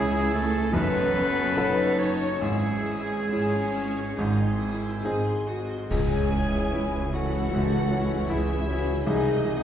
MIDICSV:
0, 0, Header, 1, 13, 480
1, 0, Start_track
1, 0, Key_signature, 4, "minor"
1, 0, Tempo, 808625
1, 929, Tempo, 867052
1, 1404, Time_signature, 4, 2, 24, 8
1, 3329, Tempo, 806452
1, 4289, Tempo, 771208
1, 5607, End_track
2, 0, Start_track
2, 0, Title_t, "Violin section"
2, 0, Program_c, 0, 48
2, 0, Note_on_c, 0, 85, 71
2, 74, Note_off_c, 0, 85, 0
2, 83, Note_on_c, 0, 88, 64
2, 193, Note_on_c, 0, 85, 63
2, 199, Note_off_c, 0, 88, 0
2, 308, Note_on_c, 0, 88, 57
2, 314, Note_off_c, 0, 85, 0
2, 432, Note_off_c, 0, 88, 0
2, 435, Note_on_c, 0, 81, 71
2, 549, Note_off_c, 0, 81, 0
2, 553, Note_on_c, 0, 85, 68
2, 679, Note_off_c, 0, 85, 0
2, 685, Note_on_c, 0, 81, 65
2, 795, Note_on_c, 0, 85, 63
2, 807, Note_off_c, 0, 81, 0
2, 915, Note_on_c, 0, 81, 65
2, 923, Note_off_c, 0, 85, 0
2, 1029, Note_off_c, 0, 81, 0
2, 1036, Note_on_c, 0, 85, 59
2, 1150, Note_on_c, 0, 81, 57
2, 1157, Note_off_c, 0, 85, 0
2, 1269, Note_on_c, 0, 85, 59
2, 1276, Note_off_c, 0, 81, 0
2, 1387, Note_on_c, 0, 88, 67
2, 1398, Note_off_c, 0, 85, 0
2, 1509, Note_on_c, 0, 85, 63
2, 1510, Note_off_c, 0, 88, 0
2, 1639, Note_on_c, 0, 88, 66
2, 1643, Note_off_c, 0, 85, 0
2, 1760, Note_on_c, 0, 85, 58
2, 1769, Note_off_c, 0, 88, 0
2, 1883, Note_on_c, 0, 88, 63
2, 1889, Note_off_c, 0, 85, 0
2, 2002, Note_off_c, 0, 88, 0
2, 2013, Note_on_c, 0, 85, 56
2, 2132, Note_on_c, 0, 88, 52
2, 2135, Note_off_c, 0, 85, 0
2, 2254, Note_off_c, 0, 88, 0
2, 2255, Note_on_c, 0, 85, 56
2, 2374, Note_off_c, 0, 85, 0
2, 2376, Note_on_c, 0, 87, 56
2, 2485, Note_off_c, 0, 87, 0
2, 2493, Note_on_c, 0, 84, 56
2, 2610, Note_off_c, 0, 84, 0
2, 2617, Note_on_c, 0, 87, 52
2, 2732, Note_off_c, 0, 87, 0
2, 2733, Note_on_c, 0, 84, 55
2, 2844, Note_on_c, 0, 87, 64
2, 2849, Note_off_c, 0, 84, 0
2, 2957, Note_off_c, 0, 87, 0
2, 2964, Note_on_c, 0, 84, 56
2, 3089, Note_off_c, 0, 84, 0
2, 3089, Note_on_c, 0, 87, 57
2, 3212, Note_off_c, 0, 87, 0
2, 3215, Note_on_c, 0, 84, 65
2, 3327, Note_on_c, 0, 80, 103
2, 3331, Note_off_c, 0, 84, 0
2, 4031, Note_off_c, 0, 80, 0
2, 4050, Note_on_c, 0, 78, 92
2, 4771, Note_off_c, 0, 78, 0
2, 4771, Note_on_c, 0, 76, 95
2, 5245, Note_on_c, 0, 75, 96
2, 5246, Note_off_c, 0, 76, 0
2, 5607, Note_off_c, 0, 75, 0
2, 5607, End_track
3, 0, Start_track
3, 0, Title_t, "Flute section"
3, 0, Program_c, 1, 73
3, 0, Note_on_c, 1, 68, 84
3, 178, Note_off_c, 1, 68, 0
3, 198, Note_on_c, 1, 69, 94
3, 435, Note_on_c, 1, 71, 107
3, 436, Note_off_c, 1, 69, 0
3, 1159, Note_on_c, 1, 73, 88
3, 1161, Note_off_c, 1, 71, 0
3, 1398, Note_on_c, 1, 68, 90
3, 1403, Note_off_c, 1, 73, 0
3, 2822, Note_off_c, 1, 68, 0
3, 3328, Note_on_c, 1, 73, 97
3, 4032, Note_off_c, 1, 73, 0
3, 4056, Note_on_c, 1, 69, 93
3, 4768, Note_on_c, 1, 68, 88
3, 4774, Note_off_c, 1, 69, 0
3, 5232, Note_off_c, 1, 68, 0
3, 5240, Note_on_c, 1, 68, 87
3, 5607, Note_off_c, 1, 68, 0
3, 5607, End_track
4, 0, Start_track
4, 0, Title_t, "Oboe"
4, 0, Program_c, 2, 68
4, 0, Note_on_c, 2, 68, 108
4, 202, Note_on_c, 2, 69, 103
4, 211, Note_off_c, 2, 68, 0
4, 438, Note_on_c, 2, 71, 125
4, 447, Note_off_c, 2, 69, 0
4, 1163, Note_on_c, 2, 73, 95
4, 1171, Note_off_c, 2, 71, 0
4, 1399, Note_off_c, 2, 73, 0
4, 1403, Note_on_c, 2, 68, 104
4, 2824, Note_off_c, 2, 68, 0
4, 5607, End_track
5, 0, Start_track
5, 0, Title_t, "Clarinet"
5, 0, Program_c, 3, 71
5, 0, Note_on_c, 3, 68, 103
5, 204, Note_on_c, 3, 69, 87
5, 213, Note_off_c, 3, 68, 0
5, 439, Note_off_c, 3, 69, 0
5, 444, Note_on_c, 3, 71, 101
5, 1165, Note_on_c, 3, 73, 92
5, 1174, Note_off_c, 3, 71, 0
5, 1404, Note_off_c, 3, 73, 0
5, 1407, Note_on_c, 3, 68, 83
5, 2826, Note_off_c, 3, 68, 0
5, 3328, Note_on_c, 3, 68, 98
5, 4057, Note_on_c, 3, 66, 95
5, 4066, Note_off_c, 3, 68, 0
5, 4778, Note_on_c, 3, 64, 90
5, 4788, Note_off_c, 3, 66, 0
5, 5241, Note_off_c, 3, 64, 0
5, 5244, Note_on_c, 3, 63, 89
5, 5607, Note_off_c, 3, 63, 0
5, 5607, End_track
6, 0, Start_track
6, 0, Title_t, "Trumpet"
6, 0, Program_c, 4, 56
6, 0, Note_on_c, 4, 68, 94
6, 431, Note_on_c, 4, 69, 84
6, 440, Note_off_c, 4, 68, 0
6, 1401, Note_on_c, 4, 68, 77
6, 1409, Note_off_c, 4, 69, 0
6, 2274, Note_off_c, 4, 68, 0
6, 2369, Note_on_c, 4, 68, 70
6, 3119, Note_off_c, 4, 68, 0
6, 5607, End_track
7, 0, Start_track
7, 0, Title_t, "Violin section"
7, 0, Program_c, 5, 48
7, 0, Note_on_c, 5, 68, 83
7, 174, Note_off_c, 5, 68, 0
7, 194, Note_on_c, 5, 69, 83
7, 434, Note_off_c, 5, 69, 0
7, 436, Note_on_c, 5, 71, 99
7, 1153, Note_on_c, 5, 73, 96
7, 1161, Note_off_c, 5, 71, 0
7, 1395, Note_on_c, 5, 68, 83
7, 1400, Note_off_c, 5, 73, 0
7, 2820, Note_off_c, 5, 68, 0
7, 3565, Note_on_c, 5, 64, 63
7, 3570, Note_on_c, 5, 61, 62
7, 4041, Note_off_c, 5, 61, 0
7, 4041, Note_off_c, 5, 64, 0
7, 4048, Note_on_c, 5, 61, 68
7, 4051, Note_on_c, 5, 64, 70
7, 4518, Note_off_c, 5, 61, 0
7, 4519, Note_off_c, 5, 64, 0
7, 4524, Note_on_c, 5, 61, 75
7, 4528, Note_on_c, 5, 64, 70
7, 4998, Note_off_c, 5, 61, 0
7, 5000, Note_off_c, 5, 64, 0
7, 5007, Note_on_c, 5, 61, 69
7, 5008, Note_on_c, 5, 64, 65
7, 5241, Note_off_c, 5, 61, 0
7, 5241, Note_off_c, 5, 64, 0
7, 5244, Note_on_c, 5, 63, 67
7, 5245, Note_on_c, 5, 68, 70
7, 5474, Note_off_c, 5, 63, 0
7, 5476, Note_off_c, 5, 68, 0
7, 5482, Note_on_c, 5, 63, 60
7, 5483, Note_on_c, 5, 68, 60
7, 5607, Note_off_c, 5, 63, 0
7, 5607, Note_off_c, 5, 68, 0
7, 5607, End_track
8, 0, Start_track
8, 0, Title_t, "French horn section"
8, 0, Program_c, 6, 60
8, 0, Note_on_c, 6, 52, 90
8, 0, Note_on_c, 6, 61, 90
8, 408, Note_off_c, 6, 52, 0
8, 408, Note_off_c, 6, 61, 0
8, 419, Note_on_c, 6, 54, 82
8, 420, Note_on_c, 6, 61, 86
8, 1299, Note_off_c, 6, 54, 0
8, 1299, Note_off_c, 6, 61, 0
8, 1393, Note_on_c, 6, 52, 83
8, 1396, Note_on_c, 6, 61, 79
8, 2350, Note_off_c, 6, 52, 0
8, 2352, Note_off_c, 6, 61, 0
8, 2374, Note_on_c, 6, 51, 73
8, 2376, Note_on_c, 6, 60, 70
8, 3137, Note_off_c, 6, 51, 0
8, 3138, Note_off_c, 6, 60, 0
8, 3326, Note_on_c, 6, 68, 87
8, 3558, Note_off_c, 6, 68, 0
8, 3569, Note_on_c, 6, 64, 82
8, 4278, Note_on_c, 6, 66, 80
8, 4285, Note_off_c, 6, 64, 0
8, 4527, Note_off_c, 6, 66, 0
8, 4531, Note_on_c, 6, 64, 83
8, 4774, Note_off_c, 6, 64, 0
8, 4774, Note_on_c, 6, 68, 77
8, 5007, Note_off_c, 6, 68, 0
8, 5012, Note_on_c, 6, 66, 95
8, 5236, Note_on_c, 6, 68, 102
8, 5248, Note_off_c, 6, 66, 0
8, 5607, Note_off_c, 6, 68, 0
8, 5607, End_track
9, 0, Start_track
9, 0, Title_t, "Grand piano"
9, 0, Program_c, 7, 0
9, 0, Control_c, 7, 64, 127
9, 0, Note_on_c, 7, 37, 88
9, 0, Note_on_c, 7, 49, 77
9, 0, Note_on_c, 7, 61, 66
9, 0, Note_on_c, 7, 64, 60
9, 0, Note_on_c, 7, 68, 65
9, 413, Note_off_c, 7, 61, 0
9, 413, Note_off_c, 7, 64, 0
9, 415, Note_off_c, 7, 49, 0
9, 416, Note_off_c, 7, 37, 0
9, 416, Note_off_c, 7, 68, 0
9, 435, Note_on_c, 7, 42, 89
9, 436, Note_on_c, 7, 30, 82
9, 449, Control_c, 7, 64, 0
9, 557, Control_c, 7, 64, 127
9, 926, Note_on_c, 7, 61, 69
9, 931, Note_on_c, 7, 66, 76
9, 931, Note_on_c, 7, 69, 79
9, 1381, Note_off_c, 7, 30, 0
9, 1381, Note_off_c, 7, 42, 0
9, 1381, Note_off_c, 7, 61, 0
9, 1383, Note_off_c, 7, 69, 0
9, 1384, Note_off_c, 7, 66, 0
9, 1397, Note_on_c, 7, 44, 75
9, 1400, Note_on_c, 7, 32, 65
9, 1416, Control_c, 7, 64, 0
9, 1511, Control_c, 7, 64, 127
9, 1900, Note_on_c, 7, 61, 55
9, 1902, Note_on_c, 7, 64, 54
9, 1905, Note_on_c, 7, 68, 60
9, 2349, Note_off_c, 7, 44, 0
9, 2351, Note_off_c, 7, 32, 0
9, 2354, Note_off_c, 7, 61, 0
9, 2355, Note_off_c, 7, 64, 0
9, 2357, Note_off_c, 7, 68, 0
9, 2378, Note_on_c, 7, 32, 77
9, 2378, Note_on_c, 7, 44, 81
9, 2385, Control_c, 7, 64, 0
9, 2476, Control_c, 7, 64, 127
9, 2859, Note_on_c, 7, 60, 63
9, 2859, Note_on_c, 7, 63, 60
9, 2861, Note_on_c, 7, 68, 74
9, 3309, Note_off_c, 7, 32, 0
9, 3309, Note_off_c, 7, 44, 0
9, 3314, Note_off_c, 7, 60, 0
9, 3314, Note_off_c, 7, 63, 0
9, 3315, Note_off_c, 7, 68, 0
9, 3335, Note_on_c, 7, 37, 82
9, 3341, Control_c, 7, 64, 0
9, 3444, Control_c, 7, 64, 127
9, 3585, Note_on_c, 7, 61, 62
9, 3828, Note_on_c, 7, 64, 69
9, 3967, Note_off_c, 7, 61, 0
9, 4063, Note_on_c, 7, 61, 60
9, 4200, Note_off_c, 7, 64, 0
9, 4268, Note_off_c, 7, 37, 0
9, 4297, Note_on_c, 7, 44, 70
9, 4438, Note_off_c, 7, 61, 0
9, 4538, Note_on_c, 7, 61, 66
9, 4682, Note_off_c, 7, 44, 0
9, 4774, Note_on_c, 7, 64, 75
9, 4920, Note_off_c, 7, 61, 0
9, 5015, Note_on_c, 7, 61, 62
9, 5153, Note_off_c, 7, 64, 0
9, 5250, Note_off_c, 7, 61, 0
9, 5255, Note_on_c, 7, 36, 84
9, 5258, Control_c, 7, 64, 0
9, 5344, Control_c, 7, 64, 127
9, 5492, Note_on_c, 7, 63, 66
9, 5607, Note_off_c, 7, 36, 0
9, 5607, Note_off_c, 7, 63, 0
9, 5607, End_track
10, 0, Start_track
10, 0, Title_t, "Viola section"
10, 0, Program_c, 8, 48
10, 0, Note_on_c, 8, 64, 96
10, 426, Note_off_c, 8, 64, 0
10, 436, Note_on_c, 8, 63, 84
10, 676, Note_off_c, 8, 63, 0
10, 680, Note_on_c, 8, 61, 83
10, 923, Note_off_c, 8, 61, 0
10, 924, Note_on_c, 8, 63, 96
10, 1399, Note_on_c, 8, 64, 83
10, 1402, Note_off_c, 8, 63, 0
10, 1846, Note_off_c, 8, 64, 0
10, 1891, Note_on_c, 8, 61, 93
10, 2350, Note_off_c, 8, 61, 0
10, 2371, Note_on_c, 8, 63, 78
10, 2602, Note_on_c, 8, 64, 81
10, 2608, Note_off_c, 8, 63, 0
10, 2838, Note_off_c, 8, 64, 0
10, 2843, Note_on_c, 8, 68, 91
10, 3089, Note_off_c, 8, 68, 0
10, 3092, Note_on_c, 8, 66, 75
10, 3331, Note_off_c, 8, 66, 0
10, 3580, Note_on_c, 8, 52, 60
10, 3580, Note_on_c, 8, 56, 63
10, 4049, Note_off_c, 8, 52, 0
10, 4049, Note_off_c, 8, 56, 0
10, 4059, Note_on_c, 8, 56, 61
10, 4060, Note_on_c, 8, 52, 71
10, 4524, Note_off_c, 8, 56, 0
10, 4525, Note_off_c, 8, 52, 0
10, 4531, Note_on_c, 8, 52, 76
10, 4532, Note_on_c, 8, 56, 72
10, 5002, Note_off_c, 8, 52, 0
10, 5002, Note_off_c, 8, 56, 0
10, 5009, Note_on_c, 8, 52, 65
10, 5012, Note_on_c, 8, 56, 62
10, 5241, Note_off_c, 8, 56, 0
10, 5242, Note_off_c, 8, 52, 0
10, 5248, Note_on_c, 8, 51, 72
10, 5248, Note_on_c, 8, 56, 65
10, 5479, Note_off_c, 8, 51, 0
10, 5482, Note_off_c, 8, 56, 0
10, 5487, Note_on_c, 8, 51, 64
10, 5490, Note_on_c, 8, 56, 65
10, 5607, Note_off_c, 8, 51, 0
10, 5607, Note_off_c, 8, 56, 0
10, 5607, End_track
11, 0, Start_track
11, 0, Title_t, "Cello section"
11, 0, Program_c, 10, 48
11, 0, Note_on_c, 10, 56, 90
11, 175, Note_off_c, 10, 56, 0
11, 199, Note_on_c, 10, 57, 97
11, 436, Note_on_c, 10, 59, 101
11, 437, Note_off_c, 10, 57, 0
11, 1161, Note_off_c, 10, 59, 0
11, 1161, Note_on_c, 10, 61, 84
11, 1404, Note_off_c, 10, 61, 0
11, 1405, Note_on_c, 10, 56, 78
11, 2847, Note_off_c, 10, 56, 0
11, 3329, Note_on_c, 10, 37, 85
11, 3763, Note_off_c, 10, 37, 0
11, 3824, Note_on_c, 10, 37, 75
11, 4237, Note_off_c, 10, 37, 0
11, 4289, Note_on_c, 10, 37, 91
11, 4718, Note_off_c, 10, 37, 0
11, 4774, Note_on_c, 10, 37, 79
11, 5192, Note_off_c, 10, 37, 0
11, 5248, Note_on_c, 10, 36, 78
11, 5607, Note_off_c, 10, 36, 0
11, 5607, End_track
12, 0, Start_track
12, 0, Title_t, "Double bass section"
12, 0, Program_c, 11, 48
12, 0, Note_on_c, 11, 37, 89
12, 378, Note_off_c, 11, 37, 0
12, 436, Note_on_c, 11, 30, 96
12, 869, Note_off_c, 11, 30, 0
12, 930, Note_on_c, 11, 30, 70
12, 1347, Note_off_c, 11, 30, 0
12, 1407, Note_on_c, 11, 32, 80
12, 1841, Note_off_c, 11, 32, 0
12, 1903, Note_on_c, 11, 32, 65
12, 2322, Note_off_c, 11, 32, 0
12, 2376, Note_on_c, 11, 32, 83
12, 2791, Note_off_c, 11, 32, 0
12, 2850, Note_on_c, 11, 32, 70
12, 3276, Note_off_c, 11, 32, 0
12, 3331, Note_on_c, 11, 37, 82
12, 3764, Note_off_c, 11, 37, 0
12, 3822, Note_on_c, 11, 37, 80
12, 4235, Note_off_c, 11, 37, 0
12, 4290, Note_on_c, 11, 37, 94
12, 4718, Note_off_c, 11, 37, 0
12, 4780, Note_on_c, 11, 37, 78
12, 5195, Note_off_c, 11, 37, 0
12, 5249, Note_on_c, 11, 36, 82
12, 5607, Note_off_c, 11, 36, 0
12, 5607, End_track
13, 0, Start_track
13, 0, Title_t, "Drums"
13, 3333, Note_on_c, 9, 35, 84
13, 3333, Note_on_c, 9, 49, 72
13, 3393, Note_off_c, 9, 35, 0
13, 3393, Note_off_c, 9, 49, 0
13, 5607, End_track
0, 0, End_of_file